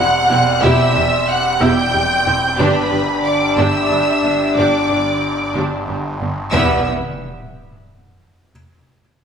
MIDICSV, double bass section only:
0, 0, Header, 1, 2, 480
1, 0, Start_track
1, 0, Key_signature, 1, "minor"
1, 0, Tempo, 655738
1, 460, Time_signature, 6, 3, 24, 8
1, 6765, End_track
2, 0, Start_track
2, 0, Title_t, "Double bass section"
2, 0, Program_c, 0, 48
2, 227, Note_on_c, 0, 28, 86
2, 285, Note_off_c, 0, 28, 0
2, 462, Note_on_c, 0, 28, 121
2, 521, Note_off_c, 0, 28, 0
2, 701, Note_on_c, 0, 28, 85
2, 760, Note_off_c, 0, 28, 0
2, 1178, Note_on_c, 0, 28, 118
2, 1237, Note_off_c, 0, 28, 0
2, 1419, Note_on_c, 0, 28, 82
2, 1478, Note_off_c, 0, 28, 0
2, 1658, Note_on_c, 0, 28, 79
2, 1717, Note_off_c, 0, 28, 0
2, 1900, Note_on_c, 0, 31, 125
2, 1959, Note_off_c, 0, 31, 0
2, 2139, Note_on_c, 0, 31, 74
2, 2198, Note_off_c, 0, 31, 0
2, 2619, Note_on_c, 0, 31, 108
2, 2678, Note_off_c, 0, 31, 0
2, 2857, Note_on_c, 0, 31, 77
2, 2916, Note_off_c, 0, 31, 0
2, 3099, Note_on_c, 0, 31, 73
2, 3157, Note_off_c, 0, 31, 0
2, 3338, Note_on_c, 0, 31, 100
2, 3397, Note_off_c, 0, 31, 0
2, 3580, Note_on_c, 0, 31, 65
2, 3639, Note_off_c, 0, 31, 0
2, 4064, Note_on_c, 0, 31, 86
2, 4122, Note_off_c, 0, 31, 0
2, 4303, Note_on_c, 0, 31, 64
2, 4362, Note_off_c, 0, 31, 0
2, 4546, Note_on_c, 0, 31, 70
2, 4605, Note_off_c, 0, 31, 0
2, 4784, Note_on_c, 0, 28, 105
2, 5050, Note_off_c, 0, 28, 0
2, 6765, End_track
0, 0, End_of_file